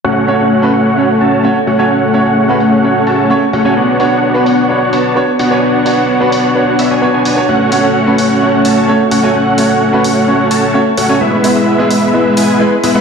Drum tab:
HH |-o-o-o-o|-o-o-o-o|-o-o-o-o|-o-o-o-o|

HH |-o-o-o-o|-o-o-o-o|-o-o-o-o|